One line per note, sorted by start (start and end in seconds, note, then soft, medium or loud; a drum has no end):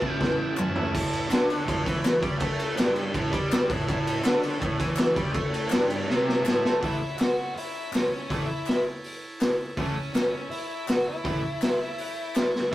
0.00 0.18 E3 medium
0.00 0.19 A3 medium
0.00 0.20 C#4 medium
0.00 0.20 E4 medium
0.00 0.89 E4 medium
0.00 0.91 A4 medium
0.00 0.92 C#5 medium
0.00 0.12 A5 medium
0.00 kick medium
0.00 crash medium
0.12 0.53 G5 medium
0.18 0.75 A2 loud
0.18 0.54 E3 medium
0.18 0.55 A3 loud
0.18 0.57 C#4 loud
0.18 0.57 E4 loud
0.18 kick medium
0.18 snare medium
0.54 0.91 E3 medium
0.54 0.77 A3 medium
0.54 0.75 C#4 medium
0.54 0.73 E4 medium
0.54 0.73 A5 medium
0.54 clap loud
0.58 mid tom medium
0.75 0.94 A3 medium
0.75 0.93 C#4 medium
0.75 0.93 E4 medium
0.75 0.92 E5 medium
0.75 floor tom medium
0.90 1.29 A2 loud
0.90 3.83 E4 medium
0.90 3.84 A4 medium
0.95 3.85 C#5 medium
0.95 kick loud
0.95 crash loud
1.13 ride medium
1.29 1.66 D3 loud
1.29 snare loud
1.29 clap loud
1.29 ride loud
1.50 ride medium
1.66 1.83 A2 loud
1.66 kick loud
1.66 ride loud
1.84 2.21 E3 loud
1.84 kick loud
1.84 ride medium
1.89 snare soft
2.04 snare loud
2.04 clap loud
2.04 ride loud
2.20 2.39 G3 loud
2.20 kick loud
2.20 ride medium
2.39 2.76 A3 loud
2.39 kick loud
2.39 ride loud
2.59 ride medium
2.75 3.13 G2 loud
2.75 clap medium
2.75 ride loud
2.79 snare loud
2.96 ride medium
3.12 3.31 A2 loud
3.12 kick loud
3.12 ride loud
3.31 3.68 G3 loud
3.31 kick loud
3.31 ride medium
3.51 3.68 A5 medium
3.51 snare loud
3.51 clap loud
3.51 ride loud
3.67 3.86 A2 loud
3.67 3.86 F#5 medium
3.67 kick loud
3.67 ride medium
3.86 4.23 A2 loud
3.86 6.78 E4 medium
3.86 6.79 A4 medium
3.86 6.80 C#5 medium
3.86 kick loud
3.86 ride loud
4.07 ride medium
4.23 4.59 D3 loud
4.23 snare loud
4.23 clap loud
4.23 ride loud
4.43 ride medium
4.60 4.79 A2 loud
4.60 kick loud
4.60 ride loud
4.79 5.16 E3 loud
4.79 kick loud
4.79 snare soft
4.79 ride medium
4.96 snare loud
4.96 clap loud
4.96 ride loud
5.15 5.34 G3 loud
5.15 kick loud
5.15 ride medium
5.34 5.71 A3 loud
5.34 kick loud
5.34 ride loud
5.54 ride medium
5.69 6.07 G2 loud
5.69 snare loud
5.69 clap loud
5.69 ride loud
5.90 ride medium
6.06 6.43 C3 loud
6.10 snare medium
6.29 snare medium
6.44 6.63 A2 loud
6.44 clap loud
6.48 snare loud
6.63 6.80 A3 loud
6.63 snare medium
6.80 6.97 A2 loud
6.80 6.97 E3 loud
6.80 6.97 A3 loud
6.80 9.73 E4 medium
6.80 7.22 E4 loud
6.80 9.74 A4 medium
6.80 9.74 C#5 medium
6.80 kick loud
6.80 open hi-hat medium
7.17 7.57 F#4 loud
7.17 snare loud
7.17 clap medium
7.17 open hi-hat medium
7.54 7.92 E4 loud
7.54 open hi-hat medium
7.93 8.09 C#4 medium
7.93 snare loud
7.93 clap loud
7.93 open hi-hat medium
8.10 8.45 C#4 medium
8.30 8.45 A2 medium
8.30 8.45 E3 loud
8.30 8.46 A3 loud
8.30 kick loud
8.30 open hi-hat medium
8.46 8.82 E4 medium
8.66 snare loud
8.66 clap medium
8.66 open hi-hat medium
9.04 open hi-hat medium
9.40 snare loud
9.40 clap loud
9.40 open hi-hat medium
9.75 9.93 A2 loud
9.75 9.93 E3 loud
9.75 10.12 C#4 loud
9.75 12.67 E4 medium
9.75 12.68 A4 medium
9.75 12.68 C#5 medium
9.75 kick loud
9.75 open hi-hat medium
9.79 9.93 A3 loud
10.13 10.32 C#4 medium
10.13 snare loud
10.13 clap medium
10.13 open hi-hat medium
10.33 10.50 C#4 medium
10.50 10.85 E4 loud
10.50 open hi-hat medium
10.88 11.07 F#4 loud
10.88 snare loud
10.88 clap loud
10.88 open hi-hat medium
11.07 12.50 E4 loud
11.24 11.39 A2 loud
11.24 11.40 E3 loud
11.24 11.40 A3 loud
11.24 kick loud
11.24 open hi-hat medium
11.61 snare loud
11.61 clap medium
11.61 open hi-hat medium
11.81 11.98 E5 medium
11.98 12.08 F#5 medium
11.98 open hi-hat medium
12.10 12.35 G5 medium
12.34 12.52 A5 medium
12.34 snare loud
12.34 clap loud
12.34 open hi-hat medium
12.50 12.69 C#6 medium
12.55 snare medium
12.69 12.75 E4 medium
12.69 12.75 A4 medium